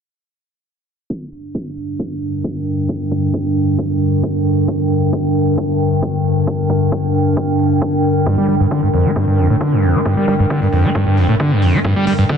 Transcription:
1.10 synth drone G2 D3, ambient pad D4, kick
1.32 open hi-hat
1.55 kick
1.77 open hi-hat
1.91 ambient pad A#4
2.00 kick
2.10 ambient pad G5
2.22 open hi-hat
2.44 kick
2.67 open hi-hat
2.89 kick
3.11 kick, open hi-hat
3.34 kick
3.46 open hi-hat
3.56 open hi-hat
3.79 kick
4.01 open hi-hat
4.23 kick
4.46 open hi-hat
4.68 kick
4.91 open hi-hat
5.13 kick
5.35 open hi-hat
5.58 kick
5.80 open hi-hat
6.03 kick
6.25 open hi-hat
6.47 kick
6.70 kick, open hi-hat
6.92 kick
7.04 open hi-hat
7.14 open hi-hat
7.37 kick
7.59 open hi-hat
7.82 kick
8.04 open hi-hat
8.26 acid bass G2, kick
8.38 acid bass G3
8.49 acid bass G3, open hi-hat
8.60 acid bass G2
8.71 acid bass D3, kick
8.83 acid bass G2
8.94 acid bass F2, open hi-hat
9.05 acid bass A#3
9.16 acid bass G2, kick
9.28 acid bass G2
9.38 acid bass F2, open hi-hat
9.50 acid bass A2
9.61 acid bass D3, kick
9.72 acid bass G2
9.83 acid bass F2, open hi-hat
9.95 acid bass A#3
10.05 acid bass G2, kick
10.17 acid bass G3
10.28 acid bass G3, kick, open hi-hat
10.40 acid bass G2
10.50 acid bass D3, kick
10.62 acid bass G2, open hi-hat
10.73 acid bass F2, open hi-hat
10.84 acid bass A#3
10.95 acid bass G2, kick
11.07 acid bass G2
11.17 acid bass F2, open hi-hat
11.29 acid bass A2
11.40 acid bass D3, kick
11.51 acid bass G2
11.62 acid bass F2, open hi-hat
11.74 acid bass A#3
11.84 acid bass G2, kick
11.96 acid bass G3
12.07 acid bass G3, open hi-hat
12.19 acid bass G2
12.29 acid bass D3, kick

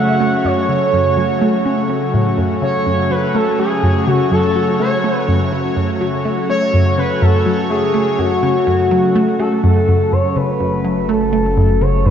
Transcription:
Already playing: analog synth pad C#3 F#3 A3 F#4 C#5, synth arpeggio sound A3, analog synth lead F#5
0.21 synth arpeggio sound A3
0.45 synth arpeggio sound F#2, analog synth lead C#5
0.69 synth arpeggio sound C#3
0.93 synth arpeggio sound F#2
1.17 synth arpeggio sound F#3
1.41 synth arpeggio sound A3
1.65 synth arpeggio sound C#4
1.89 synth arpeggio sound C#4
2.14 synth arpeggio sound A2
2.38 synth arpeggio sound F#2
2.62 synth arpeggio sound C#3, analog synth lead C#5
2.83 synth arpeggio sound F#2, analog synth pad C#5
3.11 synth arpeggio sound F#3, analog synth lead B4
3.35 synth arpeggio sound A3, analog synth lead A4
3.59 synth arpeggio sound A3, analog synth lead G#4
3.83 synth arpeggio sound F#2
4.07 synth arpeggio sound C#3, analog synth lead F#4
4.31 synth arpeggio sound F#2, analog synth lead A4
4.56 synth arpeggio sound F#3
4.80 synth arpeggio sound A3, analog synth lead C#5
5.04 synth arpeggio sound A3
5.28 synth arpeggio sound F#2
5.52 synth arpeggio sound C#3
5.77 synth arpeggio sound F#2
6.01 synth arpeggio sound F#3
6.25 synth arpeggio sound A3
6.49 synth arpeggio sound A3, analog synth lead C#5
6.70 synth arpeggio sound F#2, analog synth pad C#5
6.98 synth arpeggio sound C#3, analog synth lead B4
7.22 synth arpeggio sound F#2, analog synth lead A4
7.46 synth arpeggio sound F#3
7.70 synth arpeggio sound A3, analog synth lead G#4
7.94 synth arpeggio sound A3
8.19 synth arpeggio sound F#2, analog synth lead F#4
8.43 synth arpeggio sound C#3
8.67 synth arpeggio sound F#2
8.91 synth arpeggio sound F#3
9.15 synth arpeggio sound A3
9.40 synth arpeggio sound A3, analog synth lead A4
9.64 synth arpeggio sound F#2, analog synth lead A4
9.88 synth arpeggio sound F#2
10.12 analog synth bass F#1, synth arpeggio sound F#2, analog synth pad C#3, analog synth lead C#5
10.22 analog synth pad F#3 A3
10.36 synth arpeggio sound C#3, analog synth lead B4
10.57 synth arpeggio sound F#2, analog synth pad F#4
10.69 analog synth pad A4
10.84 synth arpeggio sound F#3
11.09 synth arpeggio sound A3, analog synth lead A4
11.33 synth arpeggio sound A3
11.57 synth arpeggio sound F#2
11.81 synth arpeggio sound C#3, analog synth lead C#5
12.05 synth arpeggio sound F#2, analog synth lead B4

